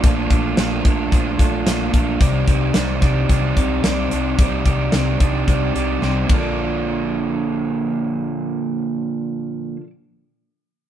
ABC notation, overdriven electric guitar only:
X:1
M:4/4
L:1/8
Q:1/4=110
K:Bb
V:1 name="Overdriven electric guitar"
[B,,F,A,DF] [A,DF] [B,,F,A,DF] [A,DF] [F,A,DF] [A,DF] [B,,F,A,DF] [A,DF] | [C,G,CEGd] [CEGd] [C,G,CEGd] [CEGd] [CEGd] [CEGd] [C,G,CEGd] [CEGd] | [C,G,CEGd] [CEGd] [C,G,CEGd] [CEGd] [CEGd] [CEGd] [C,G,CEGd] [B,DFAd]- | [B,DFAd]8- |
[B,DFAd]8 |]